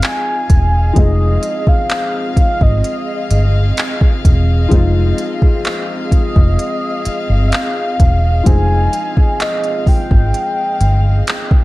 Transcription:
0.00 0.91 F3 medium
0.00 0.92 G#3 medium
0.00 0.93 C4 medium
0.00 11.64 C4 medium
0.00 0.94 D#4 medium
0.00 0.94 G#4 medium
0.00 11.64 G#4 medium
0.00 11.64 D#5 medium
0.00 11.64 F5 medium
0.00 clap loud
0.00 closed hi-hat medium
0.04 1.00 G#5 loud
0.50 0.90 E1 medium
0.50 kick medium
0.50 closed hi-hat medium
0.93 1.37 F1 loud
0.93 4.66 F3 medium
0.93 4.67 G#3 medium
0.93 4.68 C4 medium
0.93 kick loud
0.93 closed hi-hat medium
0.98 4.68 D#4 medium
0.98 4.69 G#4 medium
0.98 1.70 D#5 loud
1.43 closed hi-hat medium
1.67 2.38 F5 loud
1.67 kick medium
1.90 clap loud
1.90 closed hi-hat medium
2.37 2.64 F5 medium
2.37 muted fingered electric bass stroke soft
2.37 kick medium
2.37 closed hi-hat medium
2.61 2.81 G#1 medium
2.61 3.55 D#5 medium
2.61 kick loud
2.84 closed hi-hat medium
3.31 3.71 G1 loud
3.31 closed hi-hat medium
3.77 clap loud
3.77 closed hi-hat medium
4.01 kick medium
4.25 4.65 E1 medium
4.25 kick medium
4.25 closed hi-hat medium
4.69 5.12 F1 loud
4.69 8.41 F3 medium
4.69 8.42 G#3 medium
4.69 8.43 C4 medium
4.69 kick loud
4.69 closed hi-hat medium
4.74 8.44 D#4 medium
4.74 8.44 F4 medium
5.18 closed hi-hat medium
5.42 kick medium
5.65 clap loud
5.65 closed hi-hat medium
6.12 7.49 D#5 medium
6.12 muted fingered electric bass stroke soft
6.12 kick medium
6.12 closed hi-hat medium
6.36 6.56 F1 medium
6.36 kick loud
6.59 closed hi-hat medium
7.05 muted fingered electric bass stroke soft
7.05 closed hi-hat medium
7.30 7.49 G1 medium
7.48 7.55 E5 medium
7.52 8.46 F5 loud
7.52 clap loud
7.52 closed hi-hat medium
8.00 8.40 E1 medium
8.00 kick loud
8.00 closed hi-hat medium
8.44 8.87 F1 loud
8.44 11.64 F3 medium
8.44 11.64 G#3 medium
8.44 11.64 C4 medium
8.44 9.43 G#5 loud
8.44 kick loud
8.44 closed hi-hat medium
8.49 11.64 D#4 medium
8.49 11.64 G#4 medium
8.93 closed hi-hat medium
9.17 kick medium
9.40 9.90 D#5 medium
9.40 clap loud
9.40 closed hi-hat medium
9.64 closed hi-hat soft
9.87 11.64 G5 loud
9.87 muted fingered electric bass stroke medium
9.87 kick medium
9.87 open hi-hat soft
10.11 10.31 G#1 medium
10.11 kick loud
10.34 closed hi-hat medium
10.81 11.21 G1 medium
10.81 closed hi-hat medium
11.27 clap loud
11.27 closed hi-hat medium
11.51 kick loud

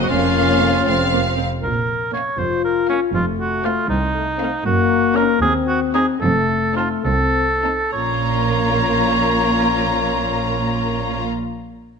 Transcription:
0.03 0.11 F#4 soft
0.09 0.85 F1 soft
0.09 0.85 F2 medium
0.09 0.84 A#3 soft
0.09 1.22 C#4 medium
0.09 0.86 C#4 medium
0.09 1.37 F4 medium
0.09 0.85 F5 soft
0.86 1.41 F1 soft
0.86 1.42 F2 soft
0.86 0.94 A3 soft
0.86 1.42 C4 soft
0.86 1.42 F5 soft
1.11 1.19 A#3 soft
1.37 1.45 C4 soft
1.63 2.23 A#1 medium
1.63 2.23 A#2 medium
1.63 2.10 A#4 medium
2.13 2.32 A#3 soft
2.13 2.32 C#4 soft
2.13 2.40 C#5 medium
2.13 2.33 F5 soft
2.39 2.99 F1 medium
2.39 2.99 F2 soft
2.39 3.10 F4 medium
2.39 2.64 C5 medium
2.64 2.89 A#4 medium
2.89 3.07 A#3 soft
2.89 3.08 C#4 soft
2.89 3.01 C#4 medium
2.89 3.08 F5 soft
3.13 3.74 F1 medium
3.13 3.74 F2 medium
3.13 3.87 A3 soft
3.13 3.26 F4 medium
3.40 3.66 F#4 medium
3.63 3.82 A3 medium
3.63 3.83 C4 soft
3.63 3.89 F4 medium
3.63 3.83 F5 soft
3.89 4.50 C2 medium
3.89 4.00 C4 soft
3.89 4.64 D#4 medium
4.14 4.26 A3 soft
4.39 4.58 A3 soft
4.39 4.59 C4 medium
4.39 4.51 C4 medium
4.39 4.59 F5 soft
4.65 5.26 F#1 medium
4.65 5.26 F#2 medium
4.65 5.40 A#3 medium
4.65 5.18 F#4 medium
5.16 5.35 C#4 medium
5.16 5.36 D#4 medium
5.16 5.41 A#4 medium
5.16 5.36 A#5 medium
5.41 6.05 D#2 medium
5.41 6.19 C4 medium
5.41 5.54 G#4 medium
5.68 5.80 F#4 medium
5.95 6.14 C4 medium
5.95 6.15 D#4 medium
5.95 6.07 G#4 medium
5.95 6.15 A#5 medium
6.21 6.88 F1 medium
6.21 6.88 F2 medium
6.21 7.03 A3 medium
6.21 6.75 A4 medium
6.76 6.97 C4 medium
6.76 6.98 D#4 medium
6.76 6.89 F4 medium
6.76 6.98 A5 soft
7.05 7.76 C2 medium
7.05 7.49 C4 soft
7.05 7.92 A4 medium
7.63 7.85 C4 soft
7.63 7.86 D#4 soft
7.63 7.86 A5 soft
7.93 11.26 A#1 soft
7.93 11.26 A#2 medium
7.93 11.26 F3 soft
7.93 11.26 A#3 soft
7.93 11.26 C#4 soft
7.93 11.26 F4 soft
7.93 11.26 C#5 medium
7.93 11.26 A#5 soft

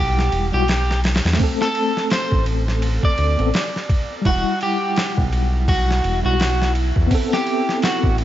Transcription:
0.00 0.29 B1 loud
0.00 0.47 G3 medium
0.00 0.48 E4 medium
0.00 0.47 G4 medium
0.00 0.50 F#5 medium
0.19 snare soft
0.32 0.51 E1 medium
0.32 ride medium
0.52 1.21 B1 medium
0.52 0.61 G3 medium
0.52 0.62 E4 medium
0.52 0.63 F#4 medium
0.52 1.00 G4 medium
0.68 snare loud
0.68 ride medium
0.91 snare medium
1.04 snare loud
1.04 ride medium
1.15 snare loud
1.15 ride medium
1.25 1.38 E2 loud
1.25 snare medium
1.25 ride medium
1.32 snare medium
1.32 ride medium
1.36 3.32 A3 medium
1.36 3.34 C4 medium
1.36 kick loud
1.36 open hi-hat medium
1.44 3.36 A4 medium
1.62 2.07 A4 loud
1.62 snare medium
1.75 ride medium
1.97 snare soft
2.10 2.44 C5 medium
2.10 snare loud
2.10 ride medium
2.32 2.99 A1 loud
2.32 kick medium
2.46 ride medium
2.68 snare soft
2.82 ride loud
3.03 4.14 D5 medium
3.03 kick loud
3.18 3.37 D2 medium
3.18 ride medium
3.37 3.52 A1 medium
3.37 3.47 B3 medium
3.37 3.48 C4 medium
3.37 3.49 A4 medium
3.37 ride soft
3.54 snare loud
3.54 ride medium
3.76 snare soft
3.89 kick loud
3.89 ride medium
4.22 4.44 E1 loud
4.22 6.18 G3 medium
4.22 8.24 E4 medium
4.22 6.20 E4 medium
4.22 kick loud
4.22 ride medium
4.26 4.58 F#4 loud
4.26 6.22 F#5 medium
4.61 5.12 G4 loud
4.61 ride medium
4.96 snare loud
4.96 ride medium
5.18 6.01 B1 loud
5.18 kick medium
5.33 ride medium
5.68 6.19 F#4 medium
5.68 kick loud
5.68 ride loud
5.91 snare soft
6.04 6.22 E1 medium
6.04 ride medium
6.23 6.92 B1 medium
6.23 6.32 G3 medium
6.23 6.33 E4 medium
6.23 6.71 F#4 medium
6.23 6.34 F#4 medium
6.40 snare loud
6.40 ride medium
6.62 snare medium
6.75 ride medium
6.96 7.09 E2 loud
6.96 kick loud
7.07 8.24 B3 medium
7.07 8.24 C4 medium
7.07 kick loud
7.07 open hi-hat medium
7.15 8.24 A4 medium
7.33 7.79 G4 loud
7.33 snare medium
7.47 ride medium
7.69 snare soft
7.82 8.16 F#4 medium
7.82 snare loud
7.82 ride medium
8.03 8.24 A1 loud
8.03 kick loud
8.18 ride medium

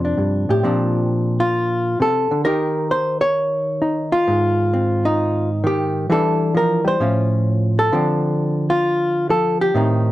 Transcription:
0.00 0.17 F2 medium
0.00 0.62 C3 medium
0.00 0.62 F3 medium
0.00 0.48 A4 medium
0.05 0.62 D4 soft
0.18 0.48 G2 medium
0.49 0.64 A2 medium
0.49 1.40 G4 medium
0.63 1.99 A#2 medium
0.63 2.45 F3 soft
0.63 2.44 C4 medium
0.63 2.45 D4 soft
1.40 2.00 F4 medium
2.00 2.31 C3 medium
2.00 2.44 A4 medium
2.31 2.46 D3 medium
2.45 5.63 D#3 medium
2.45 3.80 D#4 soft
2.45 4.26 G4 medium
2.45 2.91 A#4 loud
2.91 3.21 C5 loud
3.21 4.12 C#5 loud
3.82 4.26 D#4 medium
4.12 5.49 F4 loud
4.28 6.08 G#2 medium
4.73 6.08 C4 soft
5.05 5.65 D#4 medium
5.64 6.09 D#3 medium
5.64 6.11 G4 medium
6.10 6.99 E3 medium
6.10 6.54 G3 soft
6.10 7.00 D4 medium
6.10 7.00 E4 medium
6.10 6.56 A4 loud
6.54 6.84 F3 medium
6.54 6.87 A#4 medium
6.85 7.00 G3 medium
6.85 7.78 C5 loud
7.00 7.89 A2 medium
7.00 7.90 F3 soft
7.00 7.90 C#4 medium
7.00 7.91 F4 medium
7.79 8.69 A4 loud
7.92 9.72 D3 medium
7.92 9.28 F3 medium
7.92 9.73 C4 medium
7.92 9.73 D4 soft
8.70 9.29 F4 medium
9.29 9.73 F3 medium
9.29 9.60 A4 loud
9.61 10.12 G4 loud
9.74 10.12 A2 medium
9.74 10.12 D#3 soft
9.74 10.12 C4 medium
9.74 10.12 D#4 medium

